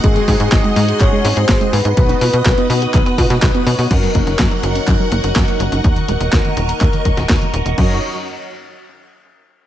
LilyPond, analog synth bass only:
\new Staff \with { instrumentName = "Analog synth bass" } { \clef bass \time 4/4 \key fis \major \tempo 4 = 124 gis,,16 r16 gis,16 gis,16 gis,,16 r16 gis,16 r16 gis,,16 r16 gis,16 gis,16 gis,,16 r16 gis,16 gis,16 | b,,16 r16 b,16 b,16 b,,16 r16 b,16 r16 b,,16 r16 b,16 b,16 b,,16 r16 b,16 b,16 | fis,16 r16 fis,,16 fis,,16 fis,16 r16 fis,,16 r16 fis,16 r16 fis,,16 fis,,16 fis,16 r16 fis,,16 fis,,16 | dis,16 r16 dis,,16 dis,,16 dis,16 r16 dis,,16 r16 dis,16 r16 dis,,16 dis,,16 dis,16 r16 dis,,16 dis,,16 |
fis,8 r2. r8 | }